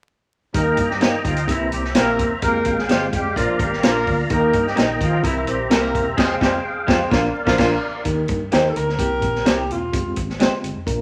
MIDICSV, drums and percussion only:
0, 0, Header, 1, 2, 480
1, 0, Start_track
1, 0, Key_signature, -3, "major"
1, 0, Tempo, 469484
1, 560, Time_signature, 4, 2, 24, 8
1, 11262, End_track
2, 0, Start_track
2, 0, Title_t, "Drums"
2, 553, Note_on_c, 9, 42, 81
2, 556, Note_on_c, 9, 36, 87
2, 655, Note_off_c, 9, 42, 0
2, 658, Note_off_c, 9, 36, 0
2, 786, Note_on_c, 9, 42, 66
2, 797, Note_on_c, 9, 36, 68
2, 888, Note_off_c, 9, 42, 0
2, 899, Note_off_c, 9, 36, 0
2, 928, Note_on_c, 9, 38, 28
2, 1030, Note_off_c, 9, 38, 0
2, 1031, Note_on_c, 9, 42, 66
2, 1046, Note_on_c, 9, 38, 100
2, 1133, Note_off_c, 9, 42, 0
2, 1148, Note_off_c, 9, 38, 0
2, 1275, Note_on_c, 9, 36, 84
2, 1277, Note_on_c, 9, 42, 80
2, 1377, Note_off_c, 9, 36, 0
2, 1379, Note_off_c, 9, 42, 0
2, 1395, Note_on_c, 9, 42, 61
2, 1497, Note_off_c, 9, 42, 0
2, 1513, Note_on_c, 9, 36, 77
2, 1520, Note_on_c, 9, 42, 88
2, 1615, Note_off_c, 9, 36, 0
2, 1622, Note_off_c, 9, 42, 0
2, 1756, Note_on_c, 9, 42, 68
2, 1859, Note_off_c, 9, 42, 0
2, 1888, Note_on_c, 9, 38, 28
2, 1990, Note_off_c, 9, 38, 0
2, 1990, Note_on_c, 9, 42, 99
2, 1995, Note_on_c, 9, 38, 102
2, 2093, Note_off_c, 9, 42, 0
2, 2097, Note_off_c, 9, 38, 0
2, 2241, Note_on_c, 9, 36, 87
2, 2242, Note_on_c, 9, 42, 61
2, 2343, Note_off_c, 9, 36, 0
2, 2344, Note_off_c, 9, 42, 0
2, 2474, Note_on_c, 9, 42, 76
2, 2478, Note_on_c, 9, 36, 86
2, 2576, Note_off_c, 9, 42, 0
2, 2580, Note_off_c, 9, 36, 0
2, 2706, Note_on_c, 9, 42, 62
2, 2719, Note_on_c, 9, 36, 78
2, 2809, Note_off_c, 9, 42, 0
2, 2821, Note_off_c, 9, 36, 0
2, 2848, Note_on_c, 9, 38, 30
2, 2950, Note_off_c, 9, 38, 0
2, 2956, Note_on_c, 9, 42, 77
2, 2971, Note_on_c, 9, 38, 83
2, 3058, Note_off_c, 9, 42, 0
2, 3073, Note_off_c, 9, 38, 0
2, 3199, Note_on_c, 9, 36, 79
2, 3200, Note_on_c, 9, 42, 78
2, 3301, Note_off_c, 9, 36, 0
2, 3302, Note_off_c, 9, 42, 0
2, 3437, Note_on_c, 9, 36, 70
2, 3447, Note_on_c, 9, 42, 84
2, 3539, Note_off_c, 9, 36, 0
2, 3549, Note_off_c, 9, 42, 0
2, 3674, Note_on_c, 9, 36, 83
2, 3677, Note_on_c, 9, 42, 67
2, 3777, Note_off_c, 9, 36, 0
2, 3779, Note_off_c, 9, 42, 0
2, 3813, Note_on_c, 9, 38, 30
2, 3915, Note_off_c, 9, 38, 0
2, 3917, Note_on_c, 9, 42, 99
2, 3922, Note_on_c, 9, 38, 102
2, 4020, Note_off_c, 9, 42, 0
2, 4024, Note_off_c, 9, 38, 0
2, 4162, Note_on_c, 9, 46, 46
2, 4163, Note_on_c, 9, 36, 87
2, 4264, Note_off_c, 9, 46, 0
2, 4266, Note_off_c, 9, 36, 0
2, 4394, Note_on_c, 9, 42, 75
2, 4401, Note_on_c, 9, 36, 98
2, 4497, Note_off_c, 9, 42, 0
2, 4503, Note_off_c, 9, 36, 0
2, 4634, Note_on_c, 9, 42, 61
2, 4642, Note_on_c, 9, 36, 74
2, 4736, Note_off_c, 9, 42, 0
2, 4745, Note_off_c, 9, 36, 0
2, 4776, Note_on_c, 9, 38, 29
2, 4874, Note_on_c, 9, 42, 70
2, 4878, Note_off_c, 9, 38, 0
2, 4889, Note_on_c, 9, 38, 84
2, 4976, Note_off_c, 9, 42, 0
2, 4991, Note_off_c, 9, 38, 0
2, 5120, Note_on_c, 9, 36, 92
2, 5124, Note_on_c, 9, 42, 80
2, 5222, Note_off_c, 9, 36, 0
2, 5226, Note_off_c, 9, 42, 0
2, 5354, Note_on_c, 9, 36, 85
2, 5362, Note_on_c, 9, 42, 79
2, 5457, Note_off_c, 9, 36, 0
2, 5464, Note_off_c, 9, 42, 0
2, 5594, Note_on_c, 9, 42, 72
2, 5696, Note_off_c, 9, 42, 0
2, 5835, Note_on_c, 9, 42, 102
2, 5839, Note_on_c, 9, 38, 100
2, 5937, Note_off_c, 9, 42, 0
2, 5941, Note_off_c, 9, 38, 0
2, 6082, Note_on_c, 9, 36, 85
2, 6084, Note_on_c, 9, 42, 60
2, 6184, Note_off_c, 9, 36, 0
2, 6187, Note_off_c, 9, 42, 0
2, 6315, Note_on_c, 9, 49, 78
2, 6316, Note_on_c, 9, 36, 87
2, 6325, Note_on_c, 9, 38, 94
2, 6417, Note_off_c, 9, 49, 0
2, 6418, Note_off_c, 9, 36, 0
2, 6427, Note_off_c, 9, 38, 0
2, 6556, Note_on_c, 9, 36, 89
2, 6564, Note_on_c, 9, 38, 86
2, 6658, Note_off_c, 9, 36, 0
2, 6666, Note_off_c, 9, 38, 0
2, 7036, Note_on_c, 9, 36, 100
2, 7043, Note_on_c, 9, 38, 102
2, 7138, Note_off_c, 9, 36, 0
2, 7146, Note_off_c, 9, 38, 0
2, 7274, Note_on_c, 9, 36, 100
2, 7281, Note_on_c, 9, 38, 95
2, 7376, Note_off_c, 9, 36, 0
2, 7383, Note_off_c, 9, 38, 0
2, 7634, Note_on_c, 9, 36, 90
2, 7640, Note_on_c, 9, 38, 88
2, 7736, Note_off_c, 9, 36, 0
2, 7742, Note_off_c, 9, 38, 0
2, 7750, Note_on_c, 9, 49, 74
2, 7754, Note_on_c, 9, 36, 88
2, 7761, Note_on_c, 9, 38, 95
2, 7853, Note_off_c, 9, 49, 0
2, 7856, Note_off_c, 9, 36, 0
2, 7863, Note_off_c, 9, 38, 0
2, 8228, Note_on_c, 9, 42, 78
2, 8235, Note_on_c, 9, 36, 81
2, 8331, Note_off_c, 9, 42, 0
2, 8337, Note_off_c, 9, 36, 0
2, 8464, Note_on_c, 9, 42, 56
2, 8476, Note_on_c, 9, 36, 76
2, 8567, Note_off_c, 9, 42, 0
2, 8578, Note_off_c, 9, 36, 0
2, 8709, Note_on_c, 9, 42, 68
2, 8723, Note_on_c, 9, 38, 81
2, 8811, Note_off_c, 9, 42, 0
2, 8826, Note_off_c, 9, 38, 0
2, 8956, Note_on_c, 9, 42, 75
2, 9058, Note_off_c, 9, 42, 0
2, 9090, Note_on_c, 9, 38, 34
2, 9189, Note_on_c, 9, 36, 84
2, 9192, Note_on_c, 9, 42, 83
2, 9193, Note_off_c, 9, 38, 0
2, 9291, Note_off_c, 9, 36, 0
2, 9294, Note_off_c, 9, 42, 0
2, 9427, Note_on_c, 9, 36, 80
2, 9427, Note_on_c, 9, 42, 63
2, 9529, Note_off_c, 9, 36, 0
2, 9529, Note_off_c, 9, 42, 0
2, 9563, Note_on_c, 9, 38, 27
2, 9665, Note_off_c, 9, 38, 0
2, 9671, Note_on_c, 9, 42, 102
2, 9675, Note_on_c, 9, 38, 95
2, 9773, Note_off_c, 9, 42, 0
2, 9777, Note_off_c, 9, 38, 0
2, 9921, Note_on_c, 9, 42, 59
2, 10023, Note_off_c, 9, 42, 0
2, 10154, Note_on_c, 9, 42, 79
2, 10156, Note_on_c, 9, 36, 95
2, 10256, Note_off_c, 9, 42, 0
2, 10259, Note_off_c, 9, 36, 0
2, 10389, Note_on_c, 9, 42, 66
2, 10397, Note_on_c, 9, 36, 65
2, 10491, Note_off_c, 9, 42, 0
2, 10499, Note_off_c, 9, 36, 0
2, 10528, Note_on_c, 9, 38, 27
2, 10630, Note_off_c, 9, 38, 0
2, 10632, Note_on_c, 9, 42, 73
2, 10647, Note_on_c, 9, 38, 93
2, 10734, Note_off_c, 9, 42, 0
2, 10749, Note_off_c, 9, 38, 0
2, 10877, Note_on_c, 9, 42, 73
2, 10979, Note_off_c, 9, 42, 0
2, 11111, Note_on_c, 9, 36, 70
2, 11117, Note_on_c, 9, 42, 87
2, 11213, Note_off_c, 9, 36, 0
2, 11220, Note_off_c, 9, 42, 0
2, 11262, End_track
0, 0, End_of_file